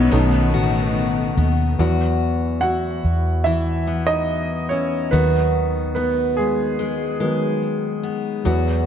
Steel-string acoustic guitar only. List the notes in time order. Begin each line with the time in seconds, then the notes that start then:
Already playing: B2 B3 E4
0.11 B2
0.54 F#4
1.37 B3
1.79 E2 F#4
2.63 E4
3.46 E3
3.87 B3
4.71 E4
5.13 D#3 F#4
5.96 B3
6.79 G#3
7.20 G#3
8.03 B3
8.45 E2 F#4